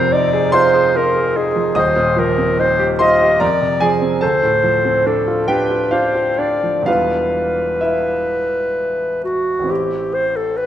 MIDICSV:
0, 0, Header, 1, 3, 480
1, 0, Start_track
1, 0, Key_signature, 0, "minor"
1, 0, Tempo, 817439
1, 1036, Time_signature, 3, 2, 24, 8
1, 2476, Tempo, 852273
1, 3436, Tempo, 943396
1, 5356, Tempo, 865801
1, 5893, End_track
2, 0, Start_track
2, 0, Title_t, "Clarinet"
2, 0, Program_c, 0, 71
2, 0, Note_on_c, 0, 72, 74
2, 72, Note_on_c, 0, 74, 79
2, 81, Note_off_c, 0, 72, 0
2, 319, Note_on_c, 0, 72, 68
2, 328, Note_off_c, 0, 74, 0
2, 565, Note_on_c, 0, 70, 73
2, 574, Note_off_c, 0, 72, 0
2, 802, Note_on_c, 0, 68, 67
2, 811, Note_off_c, 0, 70, 0
2, 1038, Note_off_c, 0, 68, 0
2, 1043, Note_on_c, 0, 72, 62
2, 1285, Note_on_c, 0, 70, 71
2, 1294, Note_off_c, 0, 72, 0
2, 1524, Note_on_c, 0, 72, 75
2, 1533, Note_off_c, 0, 70, 0
2, 1693, Note_off_c, 0, 72, 0
2, 1764, Note_on_c, 0, 75, 75
2, 2002, Note_on_c, 0, 74, 78
2, 2011, Note_off_c, 0, 75, 0
2, 2321, Note_off_c, 0, 74, 0
2, 2477, Note_on_c, 0, 72, 69
2, 2956, Note_on_c, 0, 69, 58
2, 2964, Note_off_c, 0, 72, 0
2, 3186, Note_on_c, 0, 71, 55
2, 3194, Note_off_c, 0, 69, 0
2, 3436, Note_on_c, 0, 72, 64
2, 3444, Note_off_c, 0, 71, 0
2, 3672, Note_on_c, 0, 74, 65
2, 3680, Note_off_c, 0, 72, 0
2, 3917, Note_off_c, 0, 74, 0
2, 3920, Note_on_c, 0, 71, 63
2, 5106, Note_off_c, 0, 71, 0
2, 5126, Note_on_c, 0, 66, 56
2, 5365, Note_on_c, 0, 67, 60
2, 5374, Note_off_c, 0, 66, 0
2, 5603, Note_on_c, 0, 72, 69
2, 5612, Note_off_c, 0, 67, 0
2, 5726, Note_on_c, 0, 69, 57
2, 5734, Note_off_c, 0, 72, 0
2, 5842, Note_on_c, 0, 71, 70
2, 5850, Note_off_c, 0, 69, 0
2, 5893, Note_off_c, 0, 71, 0
2, 5893, End_track
3, 0, Start_track
3, 0, Title_t, "Grand piano"
3, 0, Program_c, 1, 0
3, 0, Control_c, 1, 64, 127
3, 0, Note_on_c, 1, 29, 59
3, 0, Note_on_c, 1, 41, 58
3, 0, Note_on_c, 1, 48, 65
3, 0, Note_on_c, 1, 53, 62
3, 0, Note_on_c, 1, 60, 59
3, 0, Note_on_c, 1, 70, 79
3, 0, Note_on_c, 1, 82, 108
3, 80, Note_on_c, 1, 63, 62
3, 149, Note_off_c, 1, 60, 0
3, 196, Note_on_c, 1, 68, 58
3, 271, Note_off_c, 1, 63, 0
3, 297, Note_off_c, 1, 70, 0
3, 306, Note_on_c, 1, 84, 97
3, 314, Note_on_c, 1, 72, 68
3, 316, Note_off_c, 1, 82, 0
3, 316, Note_on_c, 1, 65, 60
3, 390, Note_off_c, 1, 68, 0
3, 434, Note_on_c, 1, 68, 55
3, 510, Note_off_c, 1, 65, 0
3, 556, Note_on_c, 1, 65, 50
3, 629, Note_off_c, 1, 68, 0
3, 675, Note_on_c, 1, 68, 50
3, 749, Note_off_c, 1, 65, 0
3, 798, Note_on_c, 1, 63, 57
3, 867, Note_off_c, 1, 68, 0
3, 916, Note_off_c, 1, 53, 0
3, 916, Note_on_c, 1, 53, 48
3, 989, Note_off_c, 1, 63, 0
3, 1011, Note_off_c, 1, 72, 0
3, 1012, Note_off_c, 1, 29, 0
3, 1015, Note_off_c, 1, 41, 0
3, 1028, Note_on_c, 1, 87, 86
3, 1030, Note_on_c, 1, 27, 58
3, 1031, Note_off_c, 1, 84, 0
3, 1034, Note_on_c, 1, 75, 74
3, 1035, Note_off_c, 1, 53, 0
3, 1036, Note_on_c, 1, 39, 58
3, 1045, Control_c, 1, 64, 0
3, 1046, Note_off_c, 1, 48, 0
3, 1123, Control_c, 1, 64, 127
3, 1151, Note_on_c, 1, 46, 54
3, 1270, Note_on_c, 1, 53, 60
3, 1345, Note_off_c, 1, 46, 0
3, 1397, Note_on_c, 1, 60, 53
3, 1465, Note_off_c, 1, 53, 0
3, 1521, Note_on_c, 1, 63, 56
3, 1590, Note_off_c, 1, 60, 0
3, 1639, Note_on_c, 1, 67, 58
3, 1714, Note_off_c, 1, 63, 0
3, 1735, Note_off_c, 1, 75, 0
3, 1756, Note_off_c, 1, 87, 0
3, 1756, Note_on_c, 1, 84, 88
3, 1763, Note_on_c, 1, 72, 70
3, 1765, Note_on_c, 1, 65, 59
3, 1834, Note_off_c, 1, 67, 0
3, 1886, Note_on_c, 1, 67, 52
3, 1957, Note_off_c, 1, 65, 0
3, 1976, Note_off_c, 1, 27, 0
3, 1979, Note_off_c, 1, 39, 0
3, 1987, Note_off_c, 1, 72, 0
3, 1996, Note_on_c, 1, 82, 81
3, 2000, Note_off_c, 1, 84, 0
3, 2001, Note_on_c, 1, 70, 56
3, 2003, Note_on_c, 1, 41, 55
3, 2005, Note_off_c, 1, 67, 0
3, 2013, Control_c, 1, 64, 0
3, 2118, Control_c, 1, 64, 127
3, 2122, Note_on_c, 1, 48, 39
3, 2222, Note_off_c, 1, 70, 0
3, 2234, Note_on_c, 1, 80, 86
3, 2236, Note_off_c, 1, 82, 0
3, 2241, Note_on_c, 1, 68, 62
3, 2243, Note_on_c, 1, 53, 51
3, 2310, Note_off_c, 1, 48, 0
3, 2359, Note_on_c, 1, 60, 46
3, 2431, Note_off_c, 1, 53, 0
3, 2461, Note_off_c, 1, 68, 0
3, 2463, Note_off_c, 1, 41, 0
3, 2472, Note_on_c, 1, 81, 70
3, 2474, Note_off_c, 1, 80, 0
3, 2478, Note_off_c, 1, 60, 0
3, 2478, Note_on_c, 1, 69, 62
3, 2479, Note_on_c, 1, 38, 50
3, 2487, Control_c, 1, 64, 0
3, 2572, Control_c, 1, 64, 127
3, 2597, Note_on_c, 1, 45, 51
3, 2713, Note_on_c, 1, 53, 55
3, 2785, Note_off_c, 1, 45, 0
3, 2833, Note_on_c, 1, 60, 50
3, 2903, Note_off_c, 1, 53, 0
3, 2954, Note_on_c, 1, 62, 53
3, 3023, Note_off_c, 1, 60, 0
3, 3072, Note_on_c, 1, 65, 49
3, 3143, Note_off_c, 1, 62, 0
3, 3167, Note_off_c, 1, 69, 0
3, 3186, Note_on_c, 1, 79, 87
3, 3187, Note_off_c, 1, 81, 0
3, 3192, Note_on_c, 1, 62, 49
3, 3192, Note_on_c, 1, 67, 64
3, 3264, Note_off_c, 1, 65, 0
3, 3316, Note_on_c, 1, 65, 44
3, 3388, Note_off_c, 1, 62, 0
3, 3421, Note_off_c, 1, 67, 0
3, 3428, Note_off_c, 1, 65, 0
3, 3429, Note_on_c, 1, 77, 67
3, 3435, Note_off_c, 1, 79, 0
3, 3436, Note_on_c, 1, 65, 53
3, 3437, Note_on_c, 1, 62, 49
3, 3546, Note_off_c, 1, 65, 0
3, 3554, Note_on_c, 1, 65, 41
3, 3625, Note_off_c, 1, 62, 0
3, 3674, Note_on_c, 1, 62, 47
3, 3746, Note_off_c, 1, 65, 0
3, 3798, Note_on_c, 1, 53, 38
3, 3870, Note_off_c, 1, 62, 0
3, 3897, Note_on_c, 1, 40, 44
3, 3899, Note_off_c, 1, 38, 0
3, 3903, Note_on_c, 1, 55, 34
3, 3906, Note_on_c, 1, 59, 32
3, 3907, Note_off_c, 1, 77, 0
3, 3912, Note_on_c, 1, 62, 35
3, 3914, Note_on_c, 1, 77, 72
3, 3916, Note_on_c, 1, 28, 43
3, 3918, Note_on_c, 1, 64, 36
3, 3920, Note_off_c, 1, 53, 0
3, 3922, Note_on_c, 1, 65, 50
3, 3930, Control_c, 1, 64, 0
3, 4027, Control_c, 1, 64, 127
3, 4381, Note_off_c, 1, 65, 0
3, 4396, Note_off_c, 1, 64, 0
3, 4396, Note_on_c, 1, 76, 59
3, 4397, Note_off_c, 1, 77, 0
3, 4403, Note_on_c, 1, 64, 46
3, 5107, Note_off_c, 1, 64, 0
3, 5124, Note_off_c, 1, 76, 0
3, 5305, Note_on_c, 1, 33, 42
3, 5316, Note_on_c, 1, 52, 35
3, 5327, Note_off_c, 1, 40, 0
3, 5329, Note_on_c, 1, 60, 36
3, 5330, Note_off_c, 1, 55, 0
3, 5331, Note_off_c, 1, 59, 0
3, 5334, Note_off_c, 1, 62, 0
3, 5336, Note_off_c, 1, 28, 0
3, 5338, Note_on_c, 1, 64, 36
3, 5350, Note_on_c, 1, 67, 37
3, 5369, Control_c, 1, 64, 0
3, 5463, Control_c, 1, 64, 127
3, 5893, Note_off_c, 1, 33, 0
3, 5893, Note_off_c, 1, 52, 0
3, 5893, Note_off_c, 1, 60, 0
3, 5893, Note_off_c, 1, 64, 0
3, 5893, Note_off_c, 1, 67, 0
3, 5893, End_track
0, 0, End_of_file